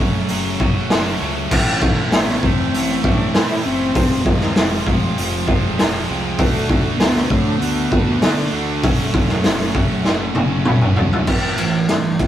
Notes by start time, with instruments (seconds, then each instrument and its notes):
Already playing: distorted electric guitar F#3 A3 C#4 F#4, cello A3
0.00 picked electric bass F#1, distorted electric guitar F#2 C#3 F#3 A3 C#4 F#4
0.28 picked electric bass F#1, distorted electric guitar F#2 C#3 F#3 A3 C#4 F#4, open hi-hat
0.59 picked electric bass F#1, distorted electric guitar F#3 A3 C#4 F#4, kick
0.90 picked electric bass F#1, distorted electric guitar F#2 C#3 F#3 A3 C#4 F#4, snare, open hi-hat
1.21 picked electric bass C#2, distorted electric guitar F#2 C#3 F#3 A3 C#4 F#4
1.51 picked electric bass A1, distorted electric guitar A2 E3 A3 C4 E4, kick, crash
1.56 cello A3
1.82 kick
2.12 picked electric bass A1, distorted electric guitar A2 E3 A3 C4 E4, cello B3, snare, open hi-hat
2.28 snare
2.43 picked electric bass E2, distorted electric guitar A2 E3 A3 C4 E4, cello C4, kick
2.73 picked electric bass A1, distorted electric guitar A2 E3 A3 C4 E4, open hi-hat
3.03 picked electric bass A1, distorted electric guitar A2 E3 A3 C4 E4, cello D4, kick
3.34 distorted electric guitar A2 E3 A3 C4 E4, picked electric bass A2, cello E4, snare, open hi-hat
3.64 picked electric bass F#1, distorted electric guitar A2 E3 A3 C4 E4, cello C4
3.95 picked electric bass F1, distorted electric guitar F2 C3 F3 G#3 C4 F4, kick, open hi-hat
4.26 picked electric bass D#2, cello G#3, kick
4.40 snare
4.56 picked electric bass F1, distorted electric guitar F2 C3 F3 G#3 C4 F4, snare, open hi-hat
4.86 picked electric bass F1, distorted electric guitar F2 C3 F3 G#3 C4 F4, kick
5.17 picked electric bass F1, distorted electric guitar F2 C3 F3 G#3 C4 F4, open hi-hat
5.46 picked electric bass F1, distorted electric guitar F3 G#3 C4 F4, kick
5.78 picked electric bass F1, distorted electric guitar F2 C3 F3 G#3 C4 F4, snare, open hi-hat
6.08 picked electric bass C2, distorted electric guitar F2 C3 F3 G#3 C4 F4
6.37 picked electric bass D2, distorted electric guitar D3 A3 D4 F#4, cello A3, kick, open hi-hat
6.69 kick
6.97 picked electric bass D2, cello B3, snare, open hi-hat
7.01 distorted electric guitar D3 A3 D4 F#4
7.15 snare
7.28 picked electric bass A2, distorted electric guitar D3 A3, cello C4, kick
7.32 distorted electric guitar D4 F#4
7.43 cello D4
7.57 cello B3
7.61 picked electric bass D2, distorted electric guitar D3 A3 D4 F#4, open hi-hat
7.91 picked electric bass D2, distorted electric guitar D3 A3 D4 F#4, kick
8.22 distorted electric guitar D3 A3 D4 F#4, picked electric bass D3, snare, open hi-hat
8.48 cello A3
8.53 picked electric bass D2, distorted electric guitar D3 A3 D4 F#4
8.83 picked electric bass F#1, distorted electric guitar F#2 C#3 F#3 A3 C#4 F#4, kick, open hi-hat
9.14 picked electric bass E1, kick
9.29 snare
9.44 picked electric bass F#1, distorted electric guitar F#2 C#3 F#3 A3 C#4 F#4, snare, open hi-hat
9.59 snare
9.75 picked electric bass F#1, distorted electric guitar F#2 C#3 F#3 A3 C#4 F#4, kick
10.04 picked electric bass F#1, distorted electric guitar F#2 C#3 F#3 A3 C#4 F#4, snare
10.35 picked electric bass F#1, distorted electric guitar F#3 A3 C#4 F#4, high tom
10.65 picked electric bass F#1, distorted electric guitar F#2 C#3 F#3 A3 C#4 F#4, mid tom
10.81 mid tom
10.96 picked electric bass C#2, distorted electric guitar F#2 C#3 F#3 A3 C#4 F#4, floor tom
11.13 floor tom
11.27 picked electric bass A1, distorted electric guitar A2 E3 A3, kick, crash
11.42 clean electric guitar E3 A3 C4 E4
11.58 picked electric bass A1, distorted electric guitar A2 E3, clean electric guitar E3 A3 C4 E4, ride
11.89 picked electric bass G2, distorted electric guitar A2 E3, cello D4, muted clean electric guitar stroke, snare, ride
12.03 muted clean electric guitar stroke
12.19 picked electric bass A1, distorted electric guitar A2 E3, cello E4, kick, ride